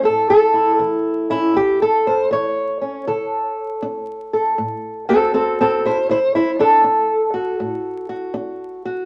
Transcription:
Already playing: A3
0.03 A2 A4
0.30 A4
0.54 E4
0.79 E3
1.30 C#4 E4
1.54 E2 G4
1.82 A4
2.07 C5
2.31 E3 C#5
2.81 C#4
3.07 D3 A4
3.82 D4
4.33 A4
4.58 A2
5.09 C4 F#4 A4
5.34 C4 A4
5.61 C4 A4
5.85 E4 C5
6.09 D3 E4 C5
6.35 E4 C5
6.59 D4 A4
6.84 D4
7.34 F#4
7.60 A2
8.09 F#4
8.34 D4
8.85 F#4

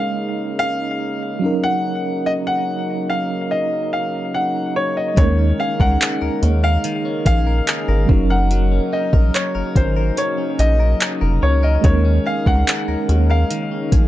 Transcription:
Already playing: C#3 G#3 A#3 C#4 D#4 A#4 F5
0.59 F5
1.39 F#3 C#4
1.44 D#4 A#4
1.64 F#5
2.26 D#5
2.47 F#5
3.10 F5
3.51 D#5
3.93 F5
4.34 F#5
4.76 C#5
4.97 D#5
5.14 D#2 D#3 G3 G#3 C#4 C#5, kick, closed hi-hat
5.19 G#3 D#4 A#4
5.38 C#4
5.59 G#4 F5
5.80 C#2 A#4 F#5, kick
6.01 G#4, clap, closed hi-hat
6.22 D#2 A#4
6.43 D#2 C#4, closed hi-hat
6.63 A#4 F5
6.84 D#3, closed hi-hat
7.05 C#4
7.26 A#1 G#4 F5, kick, closed hi-hat
7.47 A#4
7.67 G#4, clap, closed hi-hat
7.88 G#1 A#4
8.06 F#1 F#3 C#4, kick
8.10 D#4 A#4
8.30 A#4 F#5
8.51 F#3, closed hi-hat
8.72 C#4
8.93 D#4 D#5
9.13 A#1 A#4, kick
9.34 D#4 C#5, clap, closed hi-hat
9.55 G#1 A#4
9.76 G#1 C#4 C5, kick, closed hi-hat
9.96 A#4
10.17 F#3 C#5, closed hi-hat
10.38 C#4
10.59 A#1 D#4 D#5, closed hi-hat
10.80 A#4
11.00 D#4, clap, closed hi-hat
11.21 F1 A#4
11.42 C#2 C#4 C#5
11.63 A#4 D#5
11.81 D#2 C#3 D#3 G#3 C#4 C#5, kick, closed hi-hat
11.85 D#4 A#4
12.05 C#4
12.26 G#4 F5
12.46 C#2 A#4 F#5, kick
12.67 G#4, clap, closed hi-hat
12.88 D#2 A#4
13.09 D#2 C#4, closed hi-hat
13.30 A#4 F5
13.50 D#3, closed hi-hat
13.71 C#4
13.92 A#1 G#4, kick, closed hi-hat

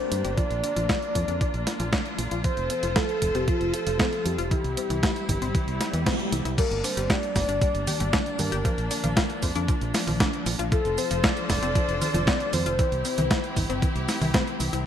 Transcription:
Already playing: A#3 D4 G4 C5
0.12 G2 G3, closed hi-hat
0.25 G1 G4, closed hi-hat
0.37 F3 F4 D5, kick, closed hi-hat
0.50 A#1, closed hi-hat
0.64 D4, closed hi-hat
0.76 A#1 F3, closed hi-hat
0.89 F4, kick, snare, closed hi-hat
1.02 closed hi-hat
1.15 F2 F3, kick, closed hi-hat
1.28 F2 D4, closed hi-hat
1.41 F3, kick, closed hi-hat
1.54 A#1, closed hi-hat
1.67 F4, snare, closed hi-hat
1.80 A#1 F3, closed hi-hat
1.93 D4, kick, snare, closed hi-hat
2.06 closed hi-hat
2.18 A#1 F3, closed hi-hat
2.31 A#1 F4, closed hi-hat
2.44 F3 A4 C5, kick, closed hi-hat
2.57 F1, closed hi-hat
2.70 C4, closed hi-hat
2.83 F1 F3, closed hi-hat
2.96 F4 A4, kick, snare, closed hi-hat
3.09 closed hi-hat
3.22 F1 F3, kick, closed hi-hat
3.35 F1 C4 G4, closed hi-hat
3.48 F3 F4, kick, closed hi-hat
3.61 F1, closed hi-hat
3.74 F4 A4, closed hi-hat
3.87 F1 F3, closed hi-hat
4.00 C4, kick, snare, closed hi-hat
4.13 closed hi-hat
4.25 F2 F3 G4, closed hi-hat
4.38 F1 F4, closed hi-hat
4.51 E3 G3 C4 E4, kick, closed hi-hat
4.64 C2, closed hi-hat
4.77 C4, closed hi-hat
4.90 C2 E3, closed hi-hat
5.03 E4, kick, snare, closed hi-hat
5.16 closed hi-hat
5.29 G1 E3, kick, closed hi-hat
5.42 G1 C4, closed hi-hat
5.55 E3, kick, closed hi-hat, swell
5.67 C2, closed hi-hat
5.81 E4, snare, closed hi-hat
5.93 E2 E3, closed hi-hat
6.06 C4, kick, snare, closed hi-hat
6.19 closed hi-hat
6.32 C2 E3, closed hi-hat
6.45 C2 E4, closed hi-hat
6.58 G3 A#3 D4 A#4, kick, closed hi-hat, crash, cabasa
6.71 G1, closed hi-hat, cabasa
6.84 D4 C5, open hi-hat, cabasa
6.97 G1 G3, closed hi-hat, cabasa
7.10 G4 D5, kick, snare, closed hi-hat, cabasa
7.23 closed hi-hat, cabasa
7.36 G1 G3 D5, kick, snare, open hi-hat, cabasa
7.49 G1 D4, closed hi-hat, cabasa
7.62 G3, kick, closed hi-hat, cabasa
7.74 G1, closed hi-hat, cabasa
7.87 G4, open hi-hat, high conga, cabasa
8.00 G1 G3, closed hi-hat, high conga, cabasa
8.13 D4, kick, snare, closed hi-hat, cabasa
8.26 closed hi-hat, cabasa
8.39 G2 G3 A#4, open hi-hat, high conga, cabasa
8.52 G1 G4, closed hi-hat, cabasa
8.65 F3, kick, closed hi-hat, cabasa
8.78 A#1, closed hi-hat, cabasa
8.91 D4, open hi-hat, cabasa
9.04 A#1 F3, closed hi-hat, high conga, cabasa
9.16 F4, kick, snare, closed hi-hat, cabasa
9.30 closed hi-hat, cabasa
9.43 F2 F3, kick, open hi-hat, cabasa
9.55 F2 D4, closed hi-hat, cabasa
9.68 F3, kick, closed hi-hat, cabasa
9.81 A#1, closed hi-hat, cabasa
9.94 F4, snare, open hi-hat, cabasa
10.07 A#1 F3, open hi-hat, high conga, cabasa
10.20 D4, kick, snare, closed hi-hat, cabasa
10.33 closed hi-hat, cabasa
10.46 A#1 F3, open hi-hat, cabasa
10.59 A#1 F4, closed hi-hat, cabasa
10.72 F3 F4 A4 C5, kick, closed hi-hat, cabasa
10.85 F1, closed hi-hat, cabasa
10.98 C4 C5, open hi-hat, cabasa
11.11 F1 F3, closed hi-hat, cabasa
11.24 F4 D5, kick, snare, closed hi-hat, cabasa
11.37 closed hi-hat, cabasa
11.50 F1 F3 D5, kick, snare, open hi-hat, cabasa
11.62 F1 C4, closed hi-hat, cabasa
11.75 F3, kick, closed hi-hat, cabasa
11.88 F1, closed hi-hat, cabasa
12.01 F4, open hi-hat, high conga, cabasa
12.14 F1 F3, closed hi-hat, high conga, cabasa
12.27 C4, kick, snare, closed hi-hat, cabasa
12.40 closed hi-hat, cabasa
12.53 F2 F3 C5, open hi-hat, high conga, cabasa
12.66 F1 F4, closed hi-hat, cabasa
12.79 E3 C4 E4 G4, kick, closed hi-hat, cabasa
12.92 C2, closed hi-hat, cabasa
13.05 C4, open hi-hat, cabasa
13.18 C2 E3, closed hi-hat, high conga, cabasa
13.31 E4, kick, snare, closed hi-hat, cabasa
13.44 closed hi-hat, cabasa
13.57 G1 E3, kick, open hi-hat, cabasa
13.70 G1 C4, closed hi-hat, cabasa
13.82 E3, kick, closed hi-hat, cabasa
13.95 C2, closed hi-hat, cabasa
14.09 E4, snare, open hi-hat, cabasa
14.21 C2 E3, open hi-hat, high conga, cabasa
14.34 C4, kick, snare, closed hi-hat, cabasa
14.47 closed hi-hat, cabasa
14.60 C2 E3, open hi-hat, cabasa
14.73 C2 E4, closed hi-hat, cabasa

